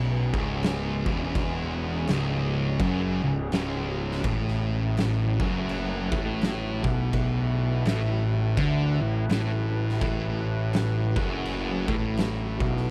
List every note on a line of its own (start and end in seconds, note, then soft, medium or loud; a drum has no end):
0.00 0.30 B1 medium
0.00 0.33 B2 loud
0.00 4.21 C#3 medium
0.00 4.21 G#3 medium
0.00 4.21 C#4 medium
0.33 1.02 C#1 medium
0.33 1.05 C#2 loud
0.33 kick loud
0.63 snare loud
0.63 crash medium
1.06 2.04 E1 loud
1.06 2.07 E2 loud
1.06 kick loud
1.35 kick loud
1.35 crash medium
2.07 2.77 C#1 medium
2.07 2.80 C#2 loud
2.07 snare loud
2.07 crash medium
2.80 3.20 F#1 loud
2.80 3.22 F#2 loud
2.80 kick loud
2.80 crash medium
3.23 3.51 C#1 medium
3.23 3.47 C#2 medium
3.52 4.21 C#1 medium
3.52 4.24 C#2 loud
3.52 snare loud
3.52 crash medium
4.11 snare soft
4.23 5.36 A1 medium
4.23 5.39 A2 loud
4.23 12.90 A3 medium
4.23 12.90 E4 medium
4.23 12.85 B4 medium
4.23 kick loud
4.23 crash medium
4.48 snare soft
4.97 snare loud
4.97 crash medium
5.40 6.08 F#1 loud
5.40 6.11 F#2 loud
5.40 kick loud
5.69 crash medium
6.12 6.80 A1 medium
6.12 6.83 A2 loud
6.12 kick loud
6.41 snare loud
6.41 crash medium
6.84 7.81 B1 loud
6.84 7.85 B2 loud
6.84 kick loud
7.13 kick loud
7.13 crash medium
7.85 8.53 A1 medium
7.85 8.57 A2 loud
7.85 snare loud
7.85 crash medium
8.57 8.98 D2 loud
8.57 8.99 D3 loud
8.57 kick loud
8.57 crash medium
9.01 9.28 A1 medium
9.01 9.24 A2 medium
9.29 9.97 A1 medium
9.29 10.01 A2 loud
9.29 snare loud
9.29 crash medium
9.89 snare soft
10.01 11.12 A1 medium
10.01 11.15 A2 loud
10.01 kick loud
10.01 crash medium
10.73 snare loud
10.73 crash medium
11.16 11.84 F#1 medium
11.16 11.88 F#2 loud
11.16 kick loud
11.46 crash medium
11.88 12.57 A1 loud
11.88 12.60 A2 loud
11.88 kick loud
12.17 snare loud
12.17 crash medium
12.60 12.90 B1 loud
12.60 12.90 B2 loud
12.60 kick loud
12.77 snare soft